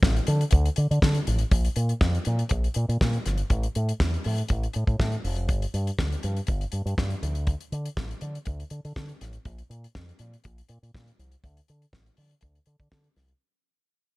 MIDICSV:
0, 0, Header, 1, 3, 480
1, 0, Start_track
1, 0, Key_signature, -1, "minor"
1, 0, Tempo, 495458
1, 1469, Time_signature, 4, 2, 24, 8
1, 13721, End_track
2, 0, Start_track
2, 0, Title_t, "Fingered electric bass"
2, 0, Program_c, 0, 33
2, 26, Note_on_c, 0, 33, 102
2, 177, Note_off_c, 0, 33, 0
2, 268, Note_on_c, 0, 50, 100
2, 418, Note_off_c, 0, 50, 0
2, 508, Note_on_c, 0, 38, 104
2, 658, Note_off_c, 0, 38, 0
2, 752, Note_on_c, 0, 50, 95
2, 830, Note_off_c, 0, 50, 0
2, 879, Note_on_c, 0, 50, 97
2, 949, Note_off_c, 0, 50, 0
2, 993, Note_on_c, 0, 50, 95
2, 1143, Note_off_c, 0, 50, 0
2, 1233, Note_on_c, 0, 33, 88
2, 1383, Note_off_c, 0, 33, 0
2, 1468, Note_on_c, 0, 34, 111
2, 1619, Note_off_c, 0, 34, 0
2, 1708, Note_on_c, 0, 46, 103
2, 1859, Note_off_c, 0, 46, 0
2, 1947, Note_on_c, 0, 41, 102
2, 2099, Note_off_c, 0, 41, 0
2, 2195, Note_on_c, 0, 46, 101
2, 2345, Note_off_c, 0, 46, 0
2, 2436, Note_on_c, 0, 34, 97
2, 2586, Note_off_c, 0, 34, 0
2, 2674, Note_on_c, 0, 46, 110
2, 2753, Note_off_c, 0, 46, 0
2, 2798, Note_on_c, 0, 46, 111
2, 2869, Note_off_c, 0, 46, 0
2, 2921, Note_on_c, 0, 46, 102
2, 3070, Note_off_c, 0, 46, 0
2, 3157, Note_on_c, 0, 31, 90
2, 3307, Note_off_c, 0, 31, 0
2, 3393, Note_on_c, 0, 33, 111
2, 3545, Note_off_c, 0, 33, 0
2, 3642, Note_on_c, 0, 45, 108
2, 3791, Note_off_c, 0, 45, 0
2, 3875, Note_on_c, 0, 40, 94
2, 4026, Note_off_c, 0, 40, 0
2, 4125, Note_on_c, 0, 45, 97
2, 4273, Note_off_c, 0, 45, 0
2, 4360, Note_on_c, 0, 33, 101
2, 4510, Note_off_c, 0, 33, 0
2, 4608, Note_on_c, 0, 45, 103
2, 4685, Note_off_c, 0, 45, 0
2, 4720, Note_on_c, 0, 45, 105
2, 4792, Note_off_c, 0, 45, 0
2, 4837, Note_on_c, 0, 45, 103
2, 4988, Note_off_c, 0, 45, 0
2, 5078, Note_on_c, 0, 29, 93
2, 5320, Note_off_c, 0, 29, 0
2, 5320, Note_on_c, 0, 31, 111
2, 5470, Note_off_c, 0, 31, 0
2, 5559, Note_on_c, 0, 43, 96
2, 5709, Note_off_c, 0, 43, 0
2, 5804, Note_on_c, 0, 38, 86
2, 5953, Note_off_c, 0, 38, 0
2, 6044, Note_on_c, 0, 43, 103
2, 6193, Note_off_c, 0, 43, 0
2, 6284, Note_on_c, 0, 31, 98
2, 6433, Note_off_c, 0, 31, 0
2, 6517, Note_on_c, 0, 43, 92
2, 6597, Note_off_c, 0, 43, 0
2, 6641, Note_on_c, 0, 43, 102
2, 6713, Note_off_c, 0, 43, 0
2, 6763, Note_on_c, 0, 43, 99
2, 6912, Note_off_c, 0, 43, 0
2, 6999, Note_on_c, 0, 38, 103
2, 7300, Note_off_c, 0, 38, 0
2, 7479, Note_on_c, 0, 50, 106
2, 7629, Note_off_c, 0, 50, 0
2, 7718, Note_on_c, 0, 33, 103
2, 7869, Note_off_c, 0, 33, 0
2, 7960, Note_on_c, 0, 50, 107
2, 8109, Note_off_c, 0, 50, 0
2, 8205, Note_on_c, 0, 38, 102
2, 8353, Note_off_c, 0, 38, 0
2, 8436, Note_on_c, 0, 50, 102
2, 8516, Note_off_c, 0, 50, 0
2, 8570, Note_on_c, 0, 50, 101
2, 8639, Note_off_c, 0, 50, 0
2, 8682, Note_on_c, 0, 50, 101
2, 8831, Note_off_c, 0, 50, 0
2, 8925, Note_on_c, 0, 33, 95
2, 9073, Note_off_c, 0, 33, 0
2, 9162, Note_on_c, 0, 34, 109
2, 9311, Note_off_c, 0, 34, 0
2, 9396, Note_on_c, 0, 46, 109
2, 9546, Note_off_c, 0, 46, 0
2, 9646, Note_on_c, 0, 41, 85
2, 9793, Note_off_c, 0, 41, 0
2, 9877, Note_on_c, 0, 46, 88
2, 10026, Note_off_c, 0, 46, 0
2, 10127, Note_on_c, 0, 34, 103
2, 10273, Note_off_c, 0, 34, 0
2, 10358, Note_on_c, 0, 46, 109
2, 10436, Note_off_c, 0, 46, 0
2, 10488, Note_on_c, 0, 46, 106
2, 10556, Note_off_c, 0, 46, 0
2, 10603, Note_on_c, 0, 46, 105
2, 10750, Note_off_c, 0, 46, 0
2, 10840, Note_on_c, 0, 36, 91
2, 10988, Note_off_c, 0, 36, 0
2, 11081, Note_on_c, 0, 38, 108
2, 11228, Note_off_c, 0, 38, 0
2, 11329, Note_on_c, 0, 50, 98
2, 11474, Note_off_c, 0, 50, 0
2, 11556, Note_on_c, 0, 33, 87
2, 11705, Note_off_c, 0, 33, 0
2, 11797, Note_on_c, 0, 50, 91
2, 11946, Note_off_c, 0, 50, 0
2, 12040, Note_on_c, 0, 38, 107
2, 12187, Note_off_c, 0, 38, 0
2, 12271, Note_on_c, 0, 50, 103
2, 12350, Note_off_c, 0, 50, 0
2, 12398, Note_on_c, 0, 50, 83
2, 12468, Note_off_c, 0, 50, 0
2, 12515, Note_on_c, 0, 50, 112
2, 12664, Note_off_c, 0, 50, 0
2, 12752, Note_on_c, 0, 36, 100
2, 12901, Note_off_c, 0, 36, 0
2, 13721, End_track
3, 0, Start_track
3, 0, Title_t, "Drums"
3, 25, Note_on_c, 9, 36, 126
3, 29, Note_on_c, 9, 38, 119
3, 122, Note_off_c, 9, 36, 0
3, 126, Note_off_c, 9, 38, 0
3, 158, Note_on_c, 9, 42, 41
3, 255, Note_off_c, 9, 42, 0
3, 258, Note_on_c, 9, 42, 72
3, 355, Note_off_c, 9, 42, 0
3, 395, Note_on_c, 9, 42, 48
3, 491, Note_off_c, 9, 42, 0
3, 491, Note_on_c, 9, 42, 86
3, 509, Note_on_c, 9, 36, 97
3, 588, Note_off_c, 9, 42, 0
3, 606, Note_off_c, 9, 36, 0
3, 635, Note_on_c, 9, 42, 46
3, 732, Note_off_c, 9, 42, 0
3, 737, Note_on_c, 9, 42, 74
3, 834, Note_off_c, 9, 42, 0
3, 884, Note_on_c, 9, 42, 45
3, 981, Note_off_c, 9, 42, 0
3, 990, Note_on_c, 9, 36, 115
3, 993, Note_on_c, 9, 38, 119
3, 1087, Note_off_c, 9, 36, 0
3, 1090, Note_off_c, 9, 38, 0
3, 1108, Note_on_c, 9, 42, 46
3, 1205, Note_off_c, 9, 42, 0
3, 1230, Note_on_c, 9, 42, 66
3, 1327, Note_off_c, 9, 42, 0
3, 1341, Note_on_c, 9, 42, 46
3, 1438, Note_off_c, 9, 42, 0
3, 1467, Note_on_c, 9, 42, 87
3, 1468, Note_on_c, 9, 36, 127
3, 1564, Note_off_c, 9, 42, 0
3, 1565, Note_off_c, 9, 36, 0
3, 1594, Note_on_c, 9, 42, 48
3, 1691, Note_off_c, 9, 42, 0
3, 1703, Note_on_c, 9, 42, 62
3, 1799, Note_off_c, 9, 42, 0
3, 1832, Note_on_c, 9, 42, 48
3, 1929, Note_off_c, 9, 42, 0
3, 1947, Note_on_c, 9, 38, 110
3, 1949, Note_on_c, 9, 36, 118
3, 2043, Note_off_c, 9, 38, 0
3, 2045, Note_off_c, 9, 36, 0
3, 2079, Note_on_c, 9, 42, 40
3, 2176, Note_off_c, 9, 42, 0
3, 2178, Note_on_c, 9, 42, 68
3, 2275, Note_off_c, 9, 42, 0
3, 2314, Note_on_c, 9, 42, 50
3, 2411, Note_off_c, 9, 42, 0
3, 2415, Note_on_c, 9, 42, 83
3, 2432, Note_on_c, 9, 36, 98
3, 2512, Note_off_c, 9, 42, 0
3, 2529, Note_off_c, 9, 36, 0
3, 2558, Note_on_c, 9, 42, 44
3, 2655, Note_off_c, 9, 42, 0
3, 2656, Note_on_c, 9, 42, 69
3, 2753, Note_off_c, 9, 42, 0
3, 2805, Note_on_c, 9, 42, 42
3, 2902, Note_off_c, 9, 42, 0
3, 2916, Note_on_c, 9, 36, 111
3, 2917, Note_on_c, 9, 38, 119
3, 3013, Note_off_c, 9, 36, 0
3, 3014, Note_off_c, 9, 38, 0
3, 3034, Note_on_c, 9, 42, 45
3, 3131, Note_off_c, 9, 42, 0
3, 3154, Note_on_c, 9, 42, 64
3, 3158, Note_on_c, 9, 38, 32
3, 3251, Note_off_c, 9, 42, 0
3, 3255, Note_off_c, 9, 38, 0
3, 3270, Note_on_c, 9, 42, 50
3, 3367, Note_off_c, 9, 42, 0
3, 3391, Note_on_c, 9, 42, 88
3, 3394, Note_on_c, 9, 36, 109
3, 3488, Note_off_c, 9, 42, 0
3, 3491, Note_off_c, 9, 36, 0
3, 3520, Note_on_c, 9, 42, 49
3, 3617, Note_off_c, 9, 42, 0
3, 3636, Note_on_c, 9, 42, 63
3, 3733, Note_off_c, 9, 42, 0
3, 3766, Note_on_c, 9, 42, 56
3, 3863, Note_off_c, 9, 42, 0
3, 3875, Note_on_c, 9, 36, 121
3, 3875, Note_on_c, 9, 38, 118
3, 3972, Note_off_c, 9, 36, 0
3, 3972, Note_off_c, 9, 38, 0
3, 4007, Note_on_c, 9, 42, 40
3, 4104, Note_off_c, 9, 42, 0
3, 4109, Note_on_c, 9, 46, 82
3, 4206, Note_off_c, 9, 46, 0
3, 4244, Note_on_c, 9, 42, 49
3, 4341, Note_off_c, 9, 42, 0
3, 4344, Note_on_c, 9, 42, 79
3, 4360, Note_on_c, 9, 36, 96
3, 4441, Note_off_c, 9, 42, 0
3, 4457, Note_off_c, 9, 36, 0
3, 4489, Note_on_c, 9, 42, 46
3, 4586, Note_off_c, 9, 42, 0
3, 4586, Note_on_c, 9, 42, 72
3, 4683, Note_off_c, 9, 42, 0
3, 4722, Note_on_c, 9, 36, 87
3, 4730, Note_on_c, 9, 42, 41
3, 4818, Note_off_c, 9, 36, 0
3, 4827, Note_off_c, 9, 42, 0
3, 4839, Note_on_c, 9, 36, 119
3, 4841, Note_on_c, 9, 38, 118
3, 4936, Note_off_c, 9, 36, 0
3, 4937, Note_off_c, 9, 38, 0
3, 4959, Note_on_c, 9, 42, 39
3, 5056, Note_off_c, 9, 42, 0
3, 5081, Note_on_c, 9, 46, 67
3, 5178, Note_off_c, 9, 46, 0
3, 5195, Note_on_c, 9, 42, 47
3, 5292, Note_off_c, 9, 42, 0
3, 5315, Note_on_c, 9, 42, 79
3, 5318, Note_on_c, 9, 36, 114
3, 5412, Note_off_c, 9, 42, 0
3, 5415, Note_off_c, 9, 36, 0
3, 5447, Note_on_c, 9, 42, 54
3, 5543, Note_off_c, 9, 42, 0
3, 5561, Note_on_c, 9, 42, 64
3, 5658, Note_off_c, 9, 42, 0
3, 5689, Note_on_c, 9, 42, 50
3, 5785, Note_off_c, 9, 42, 0
3, 5799, Note_on_c, 9, 36, 121
3, 5800, Note_on_c, 9, 38, 105
3, 5896, Note_off_c, 9, 36, 0
3, 5897, Note_off_c, 9, 38, 0
3, 5933, Note_on_c, 9, 42, 43
3, 6029, Note_off_c, 9, 42, 0
3, 6036, Note_on_c, 9, 42, 77
3, 6133, Note_off_c, 9, 42, 0
3, 6166, Note_on_c, 9, 42, 49
3, 6263, Note_off_c, 9, 42, 0
3, 6267, Note_on_c, 9, 42, 74
3, 6282, Note_on_c, 9, 36, 108
3, 6364, Note_off_c, 9, 42, 0
3, 6378, Note_off_c, 9, 36, 0
3, 6404, Note_on_c, 9, 42, 42
3, 6501, Note_off_c, 9, 42, 0
3, 6507, Note_on_c, 9, 42, 66
3, 6604, Note_off_c, 9, 42, 0
3, 6652, Note_on_c, 9, 42, 47
3, 6749, Note_off_c, 9, 42, 0
3, 6761, Note_on_c, 9, 36, 112
3, 6766, Note_on_c, 9, 38, 116
3, 6858, Note_off_c, 9, 36, 0
3, 6862, Note_off_c, 9, 38, 0
3, 6881, Note_on_c, 9, 42, 43
3, 6978, Note_off_c, 9, 42, 0
3, 7003, Note_on_c, 9, 42, 70
3, 7100, Note_off_c, 9, 42, 0
3, 7120, Note_on_c, 9, 42, 44
3, 7217, Note_off_c, 9, 42, 0
3, 7235, Note_on_c, 9, 42, 92
3, 7239, Note_on_c, 9, 36, 114
3, 7332, Note_off_c, 9, 42, 0
3, 7336, Note_off_c, 9, 36, 0
3, 7367, Note_on_c, 9, 42, 48
3, 7464, Note_off_c, 9, 42, 0
3, 7482, Note_on_c, 9, 42, 63
3, 7579, Note_off_c, 9, 42, 0
3, 7609, Note_on_c, 9, 42, 58
3, 7706, Note_off_c, 9, 42, 0
3, 7720, Note_on_c, 9, 36, 123
3, 7721, Note_on_c, 9, 38, 117
3, 7817, Note_off_c, 9, 36, 0
3, 7818, Note_off_c, 9, 38, 0
3, 7854, Note_on_c, 9, 42, 42
3, 7951, Note_off_c, 9, 42, 0
3, 7954, Note_on_c, 9, 42, 75
3, 8050, Note_off_c, 9, 42, 0
3, 8091, Note_on_c, 9, 42, 51
3, 8188, Note_off_c, 9, 42, 0
3, 8190, Note_on_c, 9, 42, 77
3, 8204, Note_on_c, 9, 36, 103
3, 8287, Note_off_c, 9, 42, 0
3, 8301, Note_off_c, 9, 36, 0
3, 8330, Note_on_c, 9, 42, 44
3, 8426, Note_off_c, 9, 42, 0
3, 8431, Note_on_c, 9, 42, 66
3, 8527, Note_off_c, 9, 42, 0
3, 8571, Note_on_c, 9, 42, 43
3, 8668, Note_off_c, 9, 42, 0
3, 8682, Note_on_c, 9, 36, 121
3, 8683, Note_on_c, 9, 38, 117
3, 8779, Note_off_c, 9, 36, 0
3, 8780, Note_off_c, 9, 38, 0
3, 8803, Note_on_c, 9, 42, 41
3, 8900, Note_off_c, 9, 42, 0
3, 8923, Note_on_c, 9, 42, 75
3, 8926, Note_on_c, 9, 38, 30
3, 9020, Note_off_c, 9, 42, 0
3, 9023, Note_off_c, 9, 38, 0
3, 9037, Note_on_c, 9, 42, 46
3, 9134, Note_off_c, 9, 42, 0
3, 9157, Note_on_c, 9, 42, 88
3, 9160, Note_on_c, 9, 36, 126
3, 9254, Note_off_c, 9, 42, 0
3, 9257, Note_off_c, 9, 36, 0
3, 9285, Note_on_c, 9, 42, 49
3, 9382, Note_off_c, 9, 42, 0
3, 9405, Note_on_c, 9, 42, 70
3, 9502, Note_off_c, 9, 42, 0
3, 9535, Note_on_c, 9, 42, 52
3, 9632, Note_off_c, 9, 42, 0
3, 9640, Note_on_c, 9, 38, 115
3, 9641, Note_on_c, 9, 36, 127
3, 9737, Note_off_c, 9, 38, 0
3, 9738, Note_off_c, 9, 36, 0
3, 9773, Note_on_c, 9, 42, 39
3, 9870, Note_off_c, 9, 42, 0
3, 9870, Note_on_c, 9, 42, 82
3, 9967, Note_off_c, 9, 42, 0
3, 10013, Note_on_c, 9, 42, 47
3, 10110, Note_off_c, 9, 42, 0
3, 10111, Note_on_c, 9, 42, 75
3, 10125, Note_on_c, 9, 36, 91
3, 10208, Note_off_c, 9, 42, 0
3, 10222, Note_off_c, 9, 36, 0
3, 10251, Note_on_c, 9, 42, 46
3, 10348, Note_off_c, 9, 42, 0
3, 10352, Note_on_c, 9, 42, 74
3, 10449, Note_off_c, 9, 42, 0
3, 10496, Note_on_c, 9, 42, 41
3, 10593, Note_off_c, 9, 42, 0
3, 10604, Note_on_c, 9, 36, 122
3, 10611, Note_on_c, 9, 38, 120
3, 10700, Note_off_c, 9, 36, 0
3, 10708, Note_off_c, 9, 38, 0
3, 10729, Note_on_c, 9, 42, 45
3, 10826, Note_off_c, 9, 42, 0
3, 10846, Note_on_c, 9, 42, 62
3, 10943, Note_off_c, 9, 42, 0
3, 10962, Note_on_c, 9, 42, 53
3, 11059, Note_off_c, 9, 42, 0
3, 11079, Note_on_c, 9, 42, 89
3, 11080, Note_on_c, 9, 36, 102
3, 11176, Note_off_c, 9, 36, 0
3, 11176, Note_off_c, 9, 42, 0
3, 11208, Note_on_c, 9, 42, 51
3, 11305, Note_off_c, 9, 42, 0
3, 11318, Note_on_c, 9, 42, 65
3, 11415, Note_off_c, 9, 42, 0
3, 11451, Note_on_c, 9, 42, 47
3, 11547, Note_off_c, 9, 42, 0
3, 11557, Note_on_c, 9, 36, 118
3, 11559, Note_on_c, 9, 38, 118
3, 11654, Note_off_c, 9, 36, 0
3, 11656, Note_off_c, 9, 38, 0
3, 11686, Note_on_c, 9, 42, 44
3, 11783, Note_off_c, 9, 42, 0
3, 11788, Note_on_c, 9, 46, 81
3, 11885, Note_off_c, 9, 46, 0
3, 11925, Note_on_c, 9, 42, 48
3, 12021, Note_off_c, 9, 42, 0
3, 12021, Note_on_c, 9, 42, 78
3, 12038, Note_on_c, 9, 36, 99
3, 12118, Note_off_c, 9, 42, 0
3, 12135, Note_off_c, 9, 36, 0
3, 12161, Note_on_c, 9, 42, 42
3, 12257, Note_off_c, 9, 42, 0
3, 12261, Note_on_c, 9, 42, 65
3, 12358, Note_off_c, 9, 42, 0
3, 12397, Note_on_c, 9, 36, 88
3, 12401, Note_on_c, 9, 42, 42
3, 12494, Note_off_c, 9, 36, 0
3, 12498, Note_off_c, 9, 42, 0
3, 12514, Note_on_c, 9, 36, 114
3, 12514, Note_on_c, 9, 38, 127
3, 12611, Note_off_c, 9, 36, 0
3, 12611, Note_off_c, 9, 38, 0
3, 12632, Note_on_c, 9, 42, 45
3, 12729, Note_off_c, 9, 42, 0
3, 12752, Note_on_c, 9, 46, 75
3, 12755, Note_on_c, 9, 38, 35
3, 12849, Note_off_c, 9, 46, 0
3, 12852, Note_off_c, 9, 38, 0
3, 12870, Note_on_c, 9, 42, 46
3, 12967, Note_off_c, 9, 42, 0
3, 13721, End_track
0, 0, End_of_file